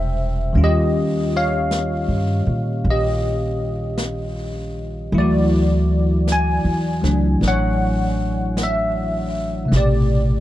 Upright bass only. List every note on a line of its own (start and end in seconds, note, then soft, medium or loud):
0.00 0.52 E1 medium
0.55 2.04 D#2 medium
2.08 2.44 G2 medium
2.47 2.82 A#2 medium
2.84 5.09 A#1 medium
5.12 6.61 D2 medium
6.65 7.00 E2 medium
7.04 7.39 C#2 medium
7.41 9.67 A1 medium
9.72 10.40 A1 medium